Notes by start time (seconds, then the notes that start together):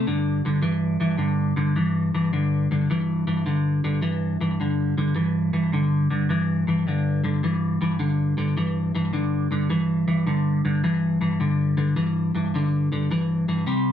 0.07 G2 D3
0.45 G2 D3
0.62 G2 E3
1.00 G2 E3
1.17 G2 D3
1.56 G2 D3
1.76 G2 E3
2.14 G2 E3
2.33 G2 D3
2.71 G2 D3
2.90 G2 E3
3.27 G2 E3
3.46 G2 D3
3.84 G2 D3
4.02 G2 E3
4.41 G2 E3
4.60 G2 D3
4.98 G2 D3
5.15 G2 E3
5.53 G2 E3
5.72 G2 D3
6.10 G2 D3
6.29 G2 E3
6.67 G2 E3
6.87 G2 D3
7.24 G2 D3
7.43 G2 E3
7.81 G2 E3
7.99 G2 D3
8.37 G2 D3
8.57 G2 E3
8.95 G2 E3
9.13 G2 D3
9.51 G2 D3
9.69 G2 E3
10.08 G2 E3
10.27 G2 D3
10.65 G2 D3
10.84 G2 E3
11.21 G2 E3
11.40 G2 D3
11.77 G2 D3
11.96 G2 E3
12.35 G2 E3
12.54 G2 D3
12.92 G2 D3
13.11 G2 E3
13.48 G2 E3
13.66 C3 G3